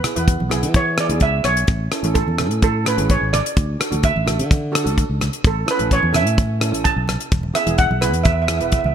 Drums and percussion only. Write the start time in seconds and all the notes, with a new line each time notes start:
0.04 cross-stick, closed hi-hat, low conga
0.16 closed hi-hat, high conga
0.28 kick, closed hi-hat, low conga
0.40 high conga
0.51 cross-stick, closed hi-hat, low conga
0.63 closed hi-hat
0.74 kick, closed hi-hat, high conga
0.98 cross-stick, closed hi-hat
1.10 closed hi-hat
1.20 kick, closed hi-hat
1.44 cross-stick, closed hi-hat, high conga
1.57 closed hi-hat
1.67 kick, closed hi-hat
1.92 cross-stick, closed hi-hat
2.04 closed hi-hat, high conga
2.15 kick, closed hi-hat
2.28 high conga
2.38 cross-stick, closed hi-hat, low conga
2.51 closed hi-hat
2.62 kick, closed hi-hat, high conga
2.86 cross-stick, closed hi-hat
2.98 closed hi-hat
3.09 kick, closed hi-hat
3.34 cross-stick, closed hi-hat, low conga
3.46 closed hi-hat
3.57 kick, closed hi-hat
3.81 cross-stick, closed hi-hat
3.92 closed hi-hat, high conga
4.03 kick, closed hi-hat
4.16 high conga
4.28 cross-stick, closed hi-hat, low conga
4.39 closed hi-hat
4.51 kick, closed hi-hat, high conga
4.75 cross-stick, closed hi-hat
4.87 closed hi-hat
4.98 kick, closed hi-hat
5.21 cross-stick, closed hi-hat, low conga
5.33 closed hi-hat
5.44 kick, closed hi-hat
5.68 cross-stick, closed hi-hat
5.79 closed hi-hat, high conga
5.91 kick, closed hi-hat
6.03 high conga
6.14 cross-stick, closed hi-hat, low conga
6.27 closed hi-hat
6.38 kick, closed hi-hat, high conga
6.61 cross-stick, closed hi-hat
6.74 closed hi-hat
6.85 kick, closed hi-hat
7.08 cross-stick, closed hi-hat, low conga
7.20 closed hi-hat
7.32 kick, closed hi-hat
7.43 high conga
7.55 cross-stick, closed hi-hat
7.67 closed hi-hat, high conga
7.78 kick, closed hi-hat, low conga
7.91 high conga
8.02 cross-stick, closed hi-hat, low conga
8.14 closed hi-hat
8.25 kick, closed hi-hat, high conga
8.48 cross-stick, closed hi-hat
8.61 closed hi-hat
8.72 kick, closed hi-hat, high conga
8.84 high conga